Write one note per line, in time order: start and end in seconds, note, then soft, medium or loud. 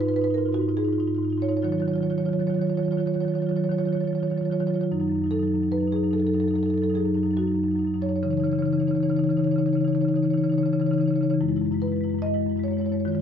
0.00 0.07 G#2 medium
0.00 0.06 D#4 medium
0.00 0.09 F4 soft
0.00 0.09 B4 loud
0.06 0.18 G#2 medium
0.06 0.14 D#4 medium
0.06 0.16 F4 medium
0.06 0.16 B4 medium
0.14 0.22 D#4 medium
0.14 0.23 F4 soft
0.14 0.24 B4 medium
0.18 0.27 G#2 medium
0.18 0.30 D#4 medium
0.23 0.31 F4 medium
0.23 0.30 B4 medium
0.27 0.38 G#2 medium
0.27 0.38 D#4 medium
0.27 0.38 F4 soft
0.34 0.49 G#2 medium
0.34 0.46 D#4 medium
0.34 0.45 F4 soft
0.34 0.54 A#4 loud
0.45 0.59 G#2 medium
0.45 0.54 D#4 medium
0.45 0.52 F4 medium
0.52 0.62 D#4 medium
0.52 0.61 F4 medium
0.52 0.75 F#4 medium
0.59 0.68 G#2 medium
0.59 0.69 D#4 medium
0.59 0.69 F4 soft
0.68 0.78 G#2 medium
0.68 0.77 D#4 medium
0.68 0.77 F4 medium
0.77 0.88 G#2 medium
0.77 0.85 D#4 medium
0.77 0.85 F4 soft
0.77 1.39 G#4 loud
0.85 0.98 G#2 medium
0.85 0.92 D#4 medium
0.85 0.93 F4 soft
0.92 1.00 D#4 soft
0.92 1.00 F4 medium
0.98 1.08 G#2 medium
0.98 1.07 D#4 medium
0.98 1.07 F4 medium
1.07 1.18 G#2 medium
1.07 1.16 D#4 medium
1.07 1.15 F4 soft
1.15 1.28 G#2 medium
1.15 1.25 D#4 medium
1.15 1.23 F4 medium
1.23 1.32 D#4 soft
1.23 1.30 F4 soft
1.28 1.38 G#2 medium
1.28 1.38 F4 soft
1.32 1.40 D#4 medium
1.38 1.49 G#2 medium
1.38 1.49 D#4 medium
1.38 1.44 F4 soft
1.42 1.52 F4 medium
1.42 1.49 C#5 loud
1.49 1.59 G#2 medium
1.49 1.59 D#4 medium
1.49 1.59 F4 medium
1.49 1.57 C#5 medium
1.57 1.64 C#5 medium
1.62 1.73 D#3 medium
1.62 1.72 F#3 medium
1.62 1.69 F4 medium
1.62 1.72 C#5 medium
1.69 1.82 D#3 medium
1.69 1.80 F#3 medium
1.69 1.78 F4 soft
1.69 1.80 C#5 medium
1.78 1.89 F#3 medium
1.78 1.86 F4 medium
1.78 1.88 C#5 medium
1.82 1.92 D#3 medium
1.82 1.94 F4 soft
1.88 2.00 D#3 medium
1.88 1.98 F#3 soft
1.88 1.96 C#5 medium
1.94 2.02 F4 medium
1.94 2.03 C#5 medium
1.98 2.11 D#3 medium
1.98 2.07 F#3 medium
2.02 2.10 F4 medium
2.02 2.10 C#5 medium
2.07 2.20 D#3 medium
2.07 2.16 F#3 soft
2.07 2.18 F4 medium
2.07 2.18 C#5 medium
2.16 2.24 F#3 medium
2.16 2.26 F4 soft
2.16 2.25 C#5 medium
2.20 2.29 D#3 medium
2.20 2.33 F#3 medium
2.25 2.39 D#3 medium
2.25 2.34 F4 medium
2.25 2.33 C#5 medium
2.33 2.41 F#3 medium
2.33 2.42 F4 soft
2.33 2.40 C#5 medium
2.39 2.50 D#3 medium
2.39 2.48 F#3 medium
2.39 2.50 F4 medium
2.39 2.47 C#5 medium
2.47 2.60 D#3 medium
2.47 2.56 F#3 medium
2.47 2.58 F4 soft
2.47 2.54 C#5 medium
2.54 2.65 F#3 soft
2.54 2.67 F4 medium
2.54 2.61 C#5 medium
2.60 2.69 D#3 medium
2.60 2.70 C#5 medium
2.65 2.74 F#3 medium
2.65 2.75 F4 medium
2.69 2.79 D#3 medium
2.69 2.77 C#5 medium
2.74 2.83 F#3 medium
2.74 2.83 F4 medium
2.74 2.85 C#5 medium
2.79 2.88 D#3 medium
2.79 2.91 F#3 medium
2.79 2.91 F4 soft
2.85 2.97 D#3 medium
2.85 2.92 C#5 medium
2.91 2.99 F#3 medium
2.91 2.98 F4 medium
2.91 3.00 C#5 medium
2.97 3.06 D#3 medium
2.97 3.08 F#3 medium
2.97 3.06 F4 medium
2.97 3.07 C#5 medium
3.06 3.16 D#3 medium
3.06 3.15 F#3 soft
3.06 3.15 F4 medium
3.06 3.14 C#5 medium
3.14 3.25 D#3 medium
3.14 3.23 F#3 medium
3.14 3.22 F4 soft
3.14 3.21 C#5 medium
3.21 3.32 F#3 soft
3.21 3.30 F4 medium
3.21 3.28 C#5 medium
3.25 3.34 D#3 medium
3.25 3.35 C#5 medium
3.30 3.40 F#3 medium
3.30 3.39 F4 medium
3.34 3.42 D#3 medium
3.34 3.42 C#5 medium
3.39 3.51 D#3 medium
3.39 3.49 F#3 medium
3.39 3.46 F4 medium
3.39 3.49 C#5 medium
3.46 3.58 F#3 medium
3.46 3.56 F4 medium
3.46 3.57 C#5 medium
3.51 3.60 D#3 medium
3.56 3.66 F#3 medium
3.56 3.64 F4 medium
3.56 3.64 C#5 medium
3.60 3.69 D#3 medium
3.60 3.72 F4 medium
3.60 3.72 C#5 medium
3.66 3.79 D#3 medium
3.66 3.74 F#3 medium
3.72 3.84 F#3 soft
3.72 3.80 F4 medium
3.72 3.78 C#5 medium
3.78 3.87 D#3 medium
3.78 3.88 F4 medium
3.78 3.85 C#5 medium
3.84 3.95 D#3 medium
3.84 3.92 F#3 medium
3.84 3.93 C#5 medium
3.88 4.01 F#3 medium
3.88 3.97 F4 medium
3.93 4.04 D#3 medium
3.93 4.00 C#5 medium
3.97 4.05 F4 soft
3.97 4.07 C#5 medium
4.01 4.13 D#3 medium
4.01 4.11 F#3 medium
4.01 4.13 F4 medium
4.07 4.18 F#3 soft
4.07 4.15 C#5 medium
4.13 4.23 D#3 medium
4.13 4.20 F4 soft
4.13 4.23 C#5 medium
4.18 4.28 F#3 medium
4.18 4.27 F4 medium
4.23 4.32 D#3 medium
4.23 4.30 C#5 medium
4.27 4.37 F#3 soft
4.27 4.35 F4 soft
4.27 4.38 C#5 medium
4.32 4.41 D#3 medium
4.32 4.43 F4 medium
4.37 4.45 F#3 medium
4.37 4.45 C#5 medium
4.41 4.50 D#3 medium
4.41 4.51 F4 medium
4.45 4.54 F#3 medium
4.45 4.52 C#5 medium
4.50 4.61 D#3 medium
4.50 4.61 F#3 medium
4.50 4.60 F4 medium
4.50 4.60 C#5 medium
4.60 4.70 D#3 medium
4.60 4.70 F#3 soft
4.60 4.68 F4 soft
4.60 4.67 C#5 medium
4.67 4.81 D#3 medium
4.67 4.80 F#3 medium
4.67 4.76 F4 medium
4.67 4.74 C#5 medium
4.74 4.83 F4 medium
4.74 4.81 C#5 medium
4.80 4.89 D#3 medium
4.80 4.89 F#3 medium
4.80 4.88 F4 medium
4.80 4.89 C#5 medium
4.92 5.02 F#2 medium
4.92 5.01 F#3 medium
4.92 5.00 D#4 medium
5.00 5.12 F#2 medium
5.00 5.10 F#3 soft
5.00 5.08 D#4 medium
5.08 5.22 F#2 medium
5.08 5.18 F#3 soft
5.08 5.15 D#4 medium
5.15 5.26 F#3 soft
5.15 5.24 D#4 soft
5.22 5.33 F#2 medium
5.22 5.32 D#4 medium
5.26 5.35 F#3 medium
5.31 5.43 F#2 medium
5.31 5.39 D#4 medium
5.31 5.71 A4 medium
5.35 5.43 F#3 soft
5.39 5.54 F#2 medium
5.39 5.52 F#3 medium
5.39 5.48 D#4 medium
5.48 5.60 F#3 soft
5.48 5.55 D#4 soft
5.54 5.63 F#2 medium
5.54 5.63 D#4 medium
5.60 5.72 F#2 medium
5.60 5.69 F#3 soft
5.60 5.72 D#4 medium
5.69 5.83 F#2 medium
5.69 5.77 F#3 soft
5.69 5.80 D#4 medium
5.69 5.93 B4 loud
5.77 5.85 F#3 soft
5.77 5.88 D#4 soft
5.83 5.93 F#2 medium
5.83 5.95 F#3 soft
5.88 5.96 D#4 medium
5.92 6.03 F#2 medium
5.92 6.04 F#3 medium
5.92 6.04 D#4 soft
5.92 6.13 G#4 medium
6.03 6.14 F#2 medium
6.03 6.13 F#3 soft
6.03 6.11 D#4 medium
6.11 6.24 F#2 medium
6.11 6.22 F#3 medium
6.11 6.18 D#4 medium
6.11 6.20 A4 medium
6.18 6.29 F#3 soft
6.18 6.27 D#4 medium
6.18 6.27 A4 medium
6.24 6.34 F#2 medium
6.24 6.34 D#4 soft
6.24 6.34 A4 medium
6.29 6.38 F#3 medium
6.34 6.44 F#2 medium
6.34 6.42 D#4 medium
6.34 6.40 A4 medium
6.38 6.47 F#3 soft
6.38 6.51 D#4 soft
6.38 6.48 A4 medium
6.44 6.53 F#2 medium
6.44 6.57 F#3 medium
6.48 6.58 D#4 medium
6.48 6.55 A4 medium
6.53 6.64 F#2 medium
6.53 6.66 F#3 soft
6.53 6.63 A4 medium
6.58 6.66 D#4 medium
6.63 6.74 F#2 medium
6.63 6.74 F#3 soft
6.63 6.74 D#4 medium
6.63 6.70 A4 medium
6.70 6.83 F#2 medium
6.70 6.82 F#3 soft
6.70 6.78 A4 medium
6.74 6.82 D#4 medium
6.74 6.84 A4 medium
6.82 6.95 F#2 medium
6.82 6.91 F#3 medium
6.82 6.90 D#4 medium
6.82 6.92 A4 medium
6.90 7.00 F#3 soft
6.90 6.97 D#4 medium
6.95 7.05 F#2 medium
6.95 7.05 D#4 medium
6.95 7.36 G#4 medium
7.00 7.08 F#3 medium
7.05 7.15 F#2 medium
7.05 7.17 F#3 soft
7.05 7.14 D#4 medium
7.14 7.25 F#2 medium
7.14 7.26 F#3 medium
7.14 7.23 D#4 medium
7.23 7.34 F#2 medium
7.23 7.33 F#3 soft
7.23 7.31 D#4 medium
7.31 7.44 F#2 medium
7.31 7.42 F#3 medium
7.31 7.38 D#4 medium
7.37 7.47 D#4 soft
7.37 7.99 F#4 medium
7.42 7.54 F#2 medium
7.42 7.51 F#3 soft
7.47 7.56 D#4 medium
7.51 7.64 F#2 medium
7.51 7.59 F#3 medium
7.56 7.68 F#3 soft
7.56 7.63 D#4 soft
7.63 7.75 F#2 medium
7.63 7.71 D#4 medium
7.68 7.76 F#3 soft
7.68 7.79 D#4 medium
7.75 7.84 F#2 medium
7.75 7.84 F#3 soft
7.79 7.87 D#4 medium
7.84 7.96 F#2 medium
7.84 7.93 F#3 soft
7.84 7.94 D#4 medium
7.93 8.07 F#2 medium
7.93 8.02 F#3 soft
7.93 8.02 D#4 medium
8.02 8.10 F#3 medium
8.02 8.09 D#4 medium
8.02 8.09 C#5 medium
8.07 8.18 F#2 medium
8.07 8.19 F#3 soft
8.07 8.18 D#4 medium
8.07 8.16 C#5 medium
8.16 8.23 C#5 medium
8.23 8.33 C#3 medium
8.23 8.33 E3 medium
8.23 8.31 D#4 medium
8.23 8.30 C#5 medium
8.30 8.44 C#3 medium
8.30 8.42 E3 medium
8.30 8.40 D#4 soft
8.30 8.37 C#5 medium
8.37 8.47 D#4 medium
8.37 8.44 C#5 medium
8.42 8.53 C#3 medium
8.42 8.50 E3 medium
8.42 8.52 C#5 medium
8.47 8.58 E3 soft
8.47 8.55 D#4 soft
8.52 8.62 C#3 medium
8.52 8.63 D#4 medium
8.52 8.59 C#5 medium
8.58 8.68 E3 medium
8.58 8.65 C#5 medium
8.62 8.73 C#3 medium
8.62 8.71 D#4 medium
8.62 8.73 C#5 medium
8.68 8.77 E3 soft
8.68 8.80 D#4 medium
8.73 8.82 C#3 medium
8.73 8.80 C#5 medium
8.77 8.86 E3 medium
8.77 8.87 D#4 soft
8.77 8.88 C#5 medium
8.82 8.91 C#3 medium
8.86 8.95 E3 soft
8.86 8.97 D#4 medium
8.86 8.95 C#5 medium
8.91 9.01 C#3 medium
8.91 9.03 C#5 medium
8.95 9.05 E3 medium
8.95 9.03 D#4 medium
9.01 9.10 C#3 medium
9.01 9.11 D#4 medium
9.01 9.09 C#5 medium
9.05 9.15 E3 soft
9.05 9.16 C#5 medium
9.10 9.19 C#3 medium
9.10 9.19 D#4 medium
9.15 9.23 E3 medium
9.15 9.27 D#4 medium
9.15 9.24 C#5 medium
9.19 9.29 C#3 medium
9.23 9.32 E3 soft
9.23 9.37 D#4 soft
9.23 9.30 C#5 medium
9.29 9.40 C#3 medium
9.29 9.41 E3 medium
9.29 9.37 C#5 medium
9.37 9.47 C#3 medium
9.37 9.49 E3 medium
9.37 9.44 D#4 medium
9.37 9.44 C#5 medium
9.44 9.56 C#3 medium
9.44 9.52 D#4 medium
9.44 9.51 C#5 medium
9.49 9.58 E3 medium
9.49 9.59 D#4 medium
9.49 9.58 C#5 medium
9.56 9.66 C#3 medium
9.56 9.67 E3 soft
9.56 9.69 D#4 medium
9.56 9.66 C#5 medium
9.66 9.75 C#3 medium
9.66 9.77 E3 medium
9.66 9.77 D#4 medium
9.66 9.73 C#5 medium
9.73 9.85 C#3 medium
9.73 9.86 E3 soft
9.73 9.85 D#4 soft
9.73 9.81 C#5 medium
9.81 9.88 C#5 medium
9.85 9.95 C#3 medium
9.85 9.96 E3 medium
9.85 9.93 D#4 medium
9.85 9.95 C#5 medium
9.93 10.05 C#3 medium
9.93 10.05 E3 soft
9.93 10.01 D#4 medium
9.93 10.02 C#5 medium
10.01 10.08 D#4 medium
10.01 10.09 C#5 medium
10.05 10.14 C#3 medium
10.05 10.16 E3 medium
10.05 10.17 D#4 medium
10.05 10.16 C#5 medium
10.14 10.24 C#3 medium
10.14 10.25 E3 soft
10.14 10.26 D#4 medium
10.14 10.23 C#5 medium
10.23 10.35 C#3 medium
10.23 10.34 E3 medium
10.23 10.34 D#4 medium
10.23 10.30 C#5 medium
10.30 10.42 D#4 medium
10.30 10.38 C#5 medium
10.34 10.44 C#3 medium
10.34 10.43 E3 soft
10.34 10.44 C#5 medium
10.42 10.54 C#3 medium
10.42 10.52 E3 medium
10.42 10.49 D#4 soft
10.42 10.52 C#5 medium
10.49 10.62 E3 soft
10.49 10.58 D#4 medium
10.49 10.58 C#5 medium
10.54 10.64 C#3 medium
10.54 10.66 D#4 medium
10.58 10.70 E3 medium
10.58 10.66 C#5 medium
10.64 10.73 C#3 medium
10.64 10.73 D#4 medium
10.64 10.73 C#5 medium
10.70 10.81 C#3 medium
10.70 10.80 E3 medium
10.70 10.82 D#4 medium
10.70 10.80 C#5 medium
10.80 10.91 C#3 medium
10.80 10.89 E3 medium
10.80 10.91 D#4 medium
10.80 10.86 C#5 medium
10.86 10.98 E3 soft
10.86 10.93 C#5 medium
10.91 11.00 C#3 medium
10.91 10.98 D#4 medium
10.91 11.01 C#5 medium
10.98 11.11 C#3 medium
10.98 11.07 E3 medium
10.98 11.06 D#4 medium
10.98 11.08 C#5 medium
11.06 11.16 E3 soft
11.06 11.14 D#4 soft
11.06 11.16 C#5 medium
11.11 11.21 C#3 medium
11.11 11.22 D#4 medium
11.16 11.25 E3 medium
11.16 11.23 C#5 medium
11.21 11.31 C#3 medium
11.21 11.34 E3 soft
11.21 11.31 D#4 soft
11.21 11.30 C#5 medium
11.30 11.38 C#3 medium
11.30 11.38 D#4 medium
11.30 11.38 C#5 medium
11.34 11.38 E3 medium
11.41 11.51 F#2 medium
11.41 11.49 G#3 medium
11.41 11.48 E4 medium
11.48 11.62 F#2 medium
11.48 11.58 G#3 medium
11.48 11.56 E4 medium
11.56 11.66 G#3 medium
11.56 11.65 E4 medium
11.62 11.71 F#2 medium
11.62 11.72 E4 soft
11.66 11.74 G#3 soft
11.71 11.82 F#2 medium
11.71 11.83 G#3 medium
11.71 11.80 E4 medium
11.80 11.93 F#2 medium
11.80 11.92 G#3 soft
11.80 11.88 E4 soft
11.80 12.21 B4 medium
11.88 11.96 E4 medium
11.92 12.04 F#2 medium
11.92 12.01 G#3 medium
11.96 12.04 E4 soft
12.01 12.14 F#2 medium
12.01 12.09 G#3 soft
12.01 12.11 E4 medium
12.09 12.18 G#3 soft
12.09 12.19 E4 soft
12.14 12.25 F#2 medium
12.14 12.26 G#3 soft
12.19 12.27 E4 medium
12.19 12.62 D#5 loud
12.25 12.36 F#2 medium
12.25 12.34 G#3 medium
12.25 12.34 E4 soft
12.34 12.47 F#2 medium
12.34 12.42 G#3 soft
12.34 12.41 E4 medium
12.41 12.51 G#3 medium
12.41 12.49 E4 soft
12.47 12.56 F#2 medium
12.47 12.57 E4 soft
12.51 12.60 G#3 soft
12.56 12.68 F#2 medium
12.56 12.68 G#3 medium
12.56 12.65 E4 soft
12.64 12.73 E4 medium
12.64 12.71 C#5 medium
12.68 12.80 F#2 medium
12.68 12.77 G#3 soft
12.68 12.78 C#5 medium
12.73 12.85 G#3 medium
12.73 12.81 E4 soft
12.78 12.92 F#2 medium
12.78 12.89 E4 medium
12.78 12.86 C#5 medium
12.85 12.94 G#3 soft
12.85 12.92 C#5 medium
12.89 13.00 F#2 medium
12.89 13.00 E4 medium
12.89 13.00 C#5 medium
12.94 13.00 G#3 medium
13.00 13.08 C#5 medium
13.05 13.15 D#3 medium
13.05 13.13 G#3 medium
13.05 13.12 F4 medium
13.05 13.15 C#5 medium
13.12 13.22 D#3 medium
13.12 13.22 G#3 soft
13.12 13.22 F4 soft
13.12 13.22 C#5 medium